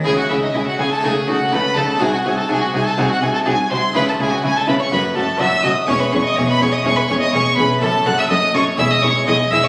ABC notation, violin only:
X:1
M:4/4
L:1/16
Q:1/4=124
K:C#m
V:1 name="Violin"
G F E D E F G A G2 F2 B2 A2 | G F G A G F G A G F G A G2 ^B2 | B A G F G A B c B2 A2 e2 d2 | c B c d c B c d c B c d c2 B2 |
A2 f e d2 c2 e d c2 d2 e c |]